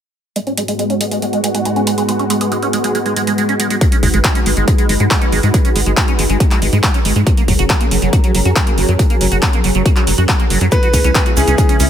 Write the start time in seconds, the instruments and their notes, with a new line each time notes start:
0.36 analog synth pad G#2 G#3 B3 F#4, acid bass G#3, closed hi-hat
0.47 acid bass C#4, closed hi-hat
0.57 acid bass G#3, closed hi-hat
0.68 acid bass G#3, closed hi-hat
0.79 acid bass G#3, closed hi-hat
0.90 acid bass C#4, closed hi-hat
1.01 acid bass G#3, closed hi-hat
1.11 acid bass G#3, closed hi-hat
1.22 acid bass G#3, closed hi-hat
1.33 acid bass G#3, closed hi-hat
1.44 acid bass G#3, closed hi-hat
1.55 acid bass G#3, closed hi-hat
1.65 acid bass G#3, closed hi-hat
1.76 acid bass C#4, closed hi-hat
1.87 acid bass G#3, closed hi-hat
1.98 acid bass G#3, closed hi-hat
2.09 acid bass G#3, closed hi-hat
2.19 acid bass C#4, closed hi-hat
2.30 acid bass G#3, closed hi-hat
2.41 acid bass G#3, closed hi-hat
2.52 acid bass G#3, closed hi-hat
2.62 acid bass C#4, closed hi-hat
2.73 acid bass G#3, closed hi-hat
2.84 acid bass G#3, closed hi-hat
2.95 acid bass G#3, closed hi-hat
3.06 acid bass G#3, closed hi-hat
3.16 acid bass G#3, closed hi-hat
3.27 acid bass G#3, closed hi-hat
3.38 acid bass G#3, closed hi-hat
3.49 acid bass C#4, closed hi-hat
3.60 acid bass G#3, closed hi-hat
3.70 acid bass G#3, closed hi-hat
3.81 analog synth pad G#3 D#4 F#4 B4, acid bass G#3, kick, closed hi-hat
3.92 acid bass C#4, closed hi-hat
4.03 analog synth bass G#1, acid bass G#3, kick, open hi-hat
4.14 analog synth bass G#1, acid bass G#3, closed hi-hat
4.24 acid bass G#3, kick, clap, closed hi-hat
4.35 acid bass C#4, closed hi-hat
4.46 analog synth bass G#1, acid bass G#3, open hi-hat
4.57 analog synth bass G#1, acid bass G#3, closed hi-hat
4.68 acid bass G#3, kick, closed hi-hat
4.78 acid bass G#3, closed hi-hat
4.89 analog synth bass G#1, acid bass G#3, open hi-hat
5.00 analog synth bass G#2, acid bass G#3, closed hi-hat
5.11 acid bass G#3, kick, clap, closed hi-hat
5.22 acid bass C#4, closed hi-hat
5.32 analog synth bass G#1, acid bass G#3, open hi-hat
5.43 analog synth bass G#2, acid bass G#3, closed hi-hat
5.54 acid bass G#3, kick, closed hi-hat
5.65 acid bass C#4, closed hi-hat
5.76 analog synth bass G#1, acid bass G#3, open hi-hat
5.86 analog synth bass G#1, acid bass G#3, closed hi-hat
5.97 acid bass G#3, kick, clap, closed hi-hat
6.08 acid bass C#4, closed hi-hat
6.19 analog synth bass G#1, acid bass G#3, open hi-hat
6.29 analog synth bass G#1, acid bass G#3, closed hi-hat
6.40 acid bass G#3, kick, closed hi-hat
6.51 acid bass G#3, clap, closed hi-hat
6.62 analog synth bass G#1, acid bass G#3, open hi-hat
6.73 analog synth bass G#2, acid bass G#3, closed hi-hat
6.83 acid bass G#3, kick, clap, closed hi-hat
6.94 acid bass C#4, closed hi-hat
7.05 analog synth bass G#1, acid bass G#3, open hi-hat
7.16 analog synth bass G#2, acid bass G#3, closed hi-hat
7.27 analog synth pad F#3 C#4 G#4 A#4, acid bass F#3, kick, closed hi-hat
7.37 acid bass A#3, closed hi-hat
7.48 analog synth bass F#1, acid bass F#3, kick, open hi-hat
7.59 analog synth bass F#1, acid bass F#4, closed hi-hat
7.70 acid bass F#3, kick, clap, closed hi-hat
7.81 acid bass A#3, closed hi-hat
7.91 analog synth bass F#1, acid bass F#3, open hi-hat
8.02 analog synth bass F#1, acid bass F#3, closed hi-hat
8.13 acid bass F#4, kick, closed hi-hat
8.24 acid bass F#3, closed hi-hat
8.34 analog synth bass F#1, acid bass F#3, open hi-hat
8.45 analog synth bass F#2, acid bass F#4, closed hi-hat
8.56 acid bass F#3, kick, clap, closed hi-hat
8.67 acid bass A#3, closed hi-hat
8.78 analog synth bass F#1, acid bass F#3, open hi-hat
8.89 analog synth bass F#2, acid bass F#3, closed hi-hat
8.99 acid bass F#3, kick, closed hi-hat
9.10 acid bass A#3, closed hi-hat
9.21 analog synth bass F#1, acid bass F#3, open hi-hat
9.32 analog synth bass F#1, acid bass F#4, closed hi-hat
9.42 acid bass F#3, kick, clap, closed hi-hat
9.53 acid bass A#3, closed hi-hat
9.64 analog synth bass F#1, acid bass F#3, open hi-hat
9.75 analog synth bass F#1, acid bass F#3, closed hi-hat
9.86 acid bass F#4, kick, closed hi-hat
9.96 acid bass F#3, clap, closed hi-hat
10.07 analog synth bass F#1, acid bass F#3, open hi-hat
10.18 analog synth bass F#2, acid bass F#4, closed hi-hat
10.29 acid bass F#3, kick, clap, closed hi-hat
10.40 acid bass A#3, closed hi-hat
10.50 analog synth bass F#1, acid bass F#3, open hi-hat
10.61 analog synth bass F#2, acid bass F#3, closed hi-hat
10.72 analog synth pad C#3 G#3 B3 E4, acid bass C#4, grand piano B4, kick, closed hi-hat, shaker
10.83 acid bass F#4, closed hi-hat
10.93 analog synth bass C#2, acid bass C#4, kick, open hi-hat, shaker
11.04 analog synth bass C#2, acid bass C#4, closed hi-hat, shaker
11.15 acid bass C#4, kick, clap, closed hi-hat, shaker
11.26 acid bass F#4, closed hi-hat
11.37 analog synth bass C#2, acid bass C#4, grand piano G#4, open hi-hat, shaker
11.47 analog synth bass C#2, acid bass C#4, closed hi-hat, shaker
11.58 acid bass C#4, kick, closed hi-hat, shaker
11.69 acid bass C#4, closed hi-hat
11.80 analog synth bass C#2, acid bass C#4, open hi-hat, shaker